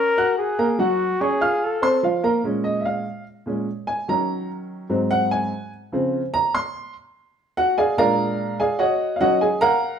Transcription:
0.00 0.10 C#4 medium
0.00 0.37 A#4 loud
0.00 0.10 C#5 medium
0.00 0.10 C#6 medium
0.18 0.51 F#4 medium
0.18 0.51 F#5 medium
0.18 0.52 F#6 medium
0.38 0.81 G#4 medium
0.59 0.76 A#3 medium
0.59 0.76 A#4 medium
0.59 0.76 A#5 medium
0.79 1.13 F#3 medium
0.79 1.13 F#4 medium
0.79 1.23 F#4 loud
0.79 1.13 F#5 medium
1.20 1.37 C#4 medium
1.20 1.66 G#4 medium
1.20 1.38 C#5 medium
1.20 1.38 C#6 medium
1.41 1.75 F4 medium
1.41 1.75 F5 medium
1.41 1.75 F6 medium
1.64 2.04 A4 medium
1.82 1.99 C4 medium
1.82 1.99 C5 medium
1.82 1.99 C6 medium
2.03 2.20 F3 medium
2.03 2.20 F4 medium
2.03 2.20 F5 medium
2.23 2.40 A#3 medium
2.23 2.40 A#4 medium
2.23 2.41 A#5 medium
2.43 3.02 A#2 soft
2.43 3.03 G#3 soft
2.43 3.03 C#4 medium
2.64 2.84 D#5 medium
2.81 2.83 E5 soft
2.85 3.23 F5 medium
3.46 3.65 A#2 soft
3.46 3.65 G#3 soft
3.46 3.65 C#4 soft
3.87 4.07 G#5 medium
4.08 4.86 D#3 medium
4.08 4.86 F#3 soft
4.08 4.87 C#4 medium
4.08 4.47 A#5 medium
4.90 5.48 G#2 medium
4.90 5.48 F#3 medium
4.90 5.49 C4 medium
5.11 5.31 F#5 medium
5.31 5.69 G#5 medium
5.92 6.20 C#3 medium
5.92 6.20 F3 soft
5.92 6.21 C4 medium
6.34 6.54 A#5 loud
6.55 6.93 C6 medium
7.57 7.77 F#4 medium
7.57 7.77 F#5 medium
7.78 7.98 G#4 medium
7.78 7.97 D5 medium
7.78 7.97 F5 medium
7.78 7.97 G#5 medium
7.97 8.56 A#2 medium
7.97 8.57 G#3 medium
7.97 8.57 D4 medium
7.97 8.56 A#4 medium
7.97 8.56 D5 medium
7.97 8.56 F5 medium
7.97 8.56 A#5 loud
8.60 8.80 G#4 medium
8.60 8.80 D5 medium
8.60 8.80 F5 medium
8.60 8.80 G#5 medium
8.79 9.18 F#4 medium
8.79 9.18 C#5 medium
8.79 9.18 D#5 medium
8.79 9.18 F#5 medium
9.16 9.48 D#3 medium
9.16 9.19 F5 medium
9.21 9.48 F#3 soft
9.21 9.49 C#4 medium
9.21 9.41 F#4 medium
9.21 9.41 C#5 medium
9.21 9.41 D#5 medium
9.21 9.41 F#5 medium
9.41 9.62 G#4 medium
9.41 9.61 G#5 medium
9.61 9.99 A#4 medium
9.61 9.99 F5 medium
9.61 9.99 F#5 medium
9.61 9.99 A#5 loud

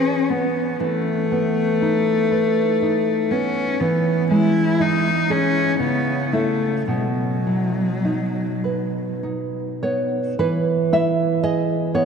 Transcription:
0.00 0.76 E3 soft
0.00 0.31 C#4 medium
0.00 0.60 G#4 soft
0.29 0.81 B3 soft
0.29 0.80 B3 soft
0.80 3.77 E3 medium
0.80 3.32 A3 medium
1.32 2.12 B3 soft
1.82 2.62 D#4 soft
2.32 3.12 B4 soft
2.82 3.61 D#4 soft
3.31 3.80 B3 soft
3.31 3.82 C#4 medium
3.80 5.75 E3 medium
3.80 4.30 B3 medium
4.31 5.10 G#3 soft
4.31 4.83 E4 medium
4.80 5.32 D#4 medium
4.80 5.59 E4 soft
5.30 5.80 C#4 medium
5.30 5.80 G#4 soft
5.80 6.85 C#3 soft
5.80 6.34 B3 medium
6.32 6.84 A3 soft
6.32 6.87 A3 medium
6.32 6.85 E4 soft
6.88 10.35 B2 soft
6.88 6.97 F#3 soft
6.96 7.06 G#3 soft
7.05 9.23 F#3 medium
7.47 8.40 F#3 soft
8.05 8.99 D#4 soft
8.64 9.58 B4 soft
9.23 10.17 D#4 soft
9.83 10.39 B3 soft
9.83 10.37 C#5 medium
10.39 12.05 E3 medium
10.39 10.90 B4 medium
10.93 11.75 E4 soft
10.93 11.42 E5 medium
11.43 12.05 G#4 medium
11.43 11.93 D#5 medium
11.94 12.05 B3 soft
11.94 12.05 C#5 medium

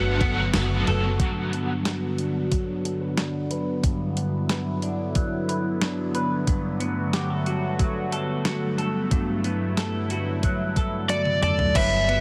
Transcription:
0.00 0.50 G1 loud
0.00 0.20 G2 medium
0.00 0.21 D3 medium
0.00 1.15 D3 medium
0.00 0.21 F#3 medium
0.00 1.15 F#3 medium
0.00 1.15 A3 medium
0.00 0.21 B3 medium
0.00 1.16 B3 medium
0.00 0.20 F#4 loud
0.00 0.53 F#4 medium
0.00 1.16 F#4 medium
0.00 0.17 A4 medium
0.00 0.86 A4 medium
0.00 1.22 B4 medium
0.00 0.50 F#5 medium
0.18 1.52 B3 medium
0.18 1.72 F#4 medium
0.18 1.18 A4 soft
0.18 kick medium
0.18 ride soft
0.23 1.72 F#3 soft
0.23 1.72 B3 soft
0.54 0.85 F#1 loud
0.54 2.18 F#4 medium
0.54 snare loud
0.54 ride medium
0.54 tambourine medium
0.87 1.18 F#1 medium
0.87 1.27 A4 medium
0.87 ride soft
1.20 3.83 G2 medium
1.20 11.71 D3 medium
1.20 11.71 F#3 medium
1.20 11.71 B3 medium
1.20 3.81 F#4 medium
1.20 kick medium
1.20 closed hi-hat medium
1.53 4.17 B3 soft
1.53 closed hi-hat soft
1.85 2.84 B4 medium
1.85 snare medium
1.85 closed hi-hat medium
2.18 3.17 D4 soft
2.18 closed hi-hat soft
2.52 5.15 F#3 soft
2.52 kick medium
2.52 closed hi-hat soft
2.85 3.01 A4 medium
2.85 closed hi-hat soft
3.01 3.50 B4 soft
3.17 4.83 D4 soft
3.17 snare medium
3.17 closed hi-hat medium
3.51 4.49 B4 medium
3.51 closed hi-hat soft
3.84 6.46 G2 medium
3.84 6.45 E4 medium
3.84 kick medium
3.84 closed hi-hat medium
4.17 6.80 B3 soft
4.17 closed hi-hat soft
4.49 5.48 B4 medium
4.49 snare medium
4.49 closed hi-hat medium
4.82 5.81 D4 medium
4.82 closed hi-hat soft
5.15 7.16 F#3 soft
5.15 kick medium
5.15 closed hi-hat medium
5.49 6.14 B4 soft
5.49 closed hi-hat soft
5.81 7.46 D4 soft
5.81 snare loud
5.81 closed hi-hat medium
6.15 7.13 B4 medium
6.15 closed hi-hat soft
6.47 9.10 G2 medium
6.47 11.71 G2 medium
6.47 11.71 A3 medium
6.47 9.09 F#4 medium
6.47 kick loud
6.47 closed hi-hat medium
6.80 9.44 B3 medium
6.80 closed hi-hat soft
7.13 7.30 G4 medium
7.13 snare medium
7.13 closed hi-hat medium
7.30 8.11 A4 soft
7.46 8.46 F#4 soft
7.46 closed hi-hat soft
7.79 10.44 F#3 medium
7.79 kick medium
7.79 closed hi-hat medium
8.12 8.77 A4 medium
8.12 closed hi-hat soft
8.45 10.10 F#4 medium
8.45 snare loud
8.45 closed hi-hat medium
8.78 9.76 A4 medium
8.78 closed hi-hat soft
9.11 11.75 G2 medium
9.11 11.73 E4 medium
9.11 kick loud
9.11 closed hi-hat medium
9.44 12.08 B3 medium
9.44 closed hi-hat soft
9.77 10.76 A4 medium
9.77 snare medium
9.77 closed hi-hat medium
10.10 11.09 F#4 medium
10.10 closed hi-hat soft
10.43 12.21 F#3 soft
10.43 kick medium
10.43 closed hi-hat soft
10.76 11.41 A4 soft
10.76 kick medium
10.76 closed hi-hat soft
11.09 12.21 F#4 medium
11.09 11.42 D5 medium
11.09 snare soft
11.09 closed hi-hat medium
11.25 high tom soft
11.42 11.75 A4 medium
11.42 11.76 D5 medium
11.42 closed hi-hat soft
11.42 mid tom medium
11.59 floor tom medium
11.75 12.21 G1 loud
11.75 12.21 D3 medium
11.75 12.21 F#3 medium
11.75 12.21 G3 medium
11.75 12.21 B3 medium
11.75 12.21 F#4 medium
11.75 12.21 B4 medium
11.75 12.21 C#5 medium
11.75 12.21 E5 medium
11.75 kick loud
11.75 crash loud
11.75 ride medium
12.09 12.21 B3 medium
12.09 ride soft

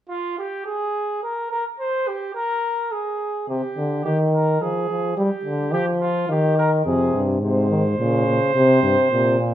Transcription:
0.09 0.36 F4 medium
0.38 0.65 G4 medium
0.65 1.22 G#4 medium
1.23 1.50 A#4 medium
1.51 1.64 A#4 medium
1.79 2.09 C5 medium
2.08 2.34 G4 medium
2.35 2.93 A#4 medium
2.92 3.48 G#4 medium
3.49 3.62 C3 medium
3.49 4.04 G4 medium
3.77 4.05 D3 medium
4.04 4.60 D#3 medium
4.04 4.17 G4 medium
4.33 4.63 A#4 medium
4.61 4.89 F3 medium
4.61 5.16 G#4 medium
4.90 5.16 F3 medium
5.17 5.30 G3 medium
5.17 5.72 G4 medium
5.45 5.75 D3 medium
5.73 6.28 F3 medium
5.73 5.86 G4 medium
6.00 6.28 F4 medium
6.29 6.84 D#3 medium
6.29 6.57 G4 medium
6.57 6.70 A#4 medium
6.84 7.12 F2 medium
6.84 7.41 C3 medium
6.84 7.21 G#4 medium
7.14 7.43 G2 medium
7.41 7.97 G#2 medium
7.41 7.69 C3 medium
7.41 9.54 C5 medium
7.70 7.82 D#3 medium
7.98 8.26 A#2 medium
7.98 8.53 C#3 medium
8.27 8.39 A#2 medium
8.54 9.10 C3 medium
8.54 8.82 C3 medium
8.83 8.95 G2 medium
9.11 9.54 A#2 medium
9.11 9.38 C3 medium
9.39 9.54 A#2 medium

